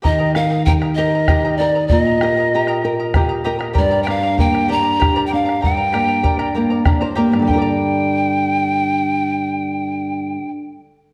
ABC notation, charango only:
X:1
M:6/8
L:1/16
Q:3/8=65
K:Gm
V:1 name="Charango"
[GBegb] [GBegb] [Begb] [Beb] [Begb] [Beb] [GBegb] [Beb] [GBegb] [GBegb] [Begb] [Beb] | [Begb] [Beb] [GBegb] [Beb] [GBegb] [GBegb] [Begb] [Beb] [Begb] [Beb] [GBegb] [Beb] | [GBdgb] [GBdgb] [Bdgb] [Bdb] [Bdgb] [Bdb] [GBdgb] [Bdb] [GBdgb] [GBdgb] [Bdgb] [Bdb] | [Bdgb] [Bdb] [GBdgb] [Bdb] [GBdgb] [GBdgb] [Bdgb] [Bdb] [Bdgb] [Bdb] [GBdgb] [Bdb] |
[GBdgb]12- | [GBdgb]12 |]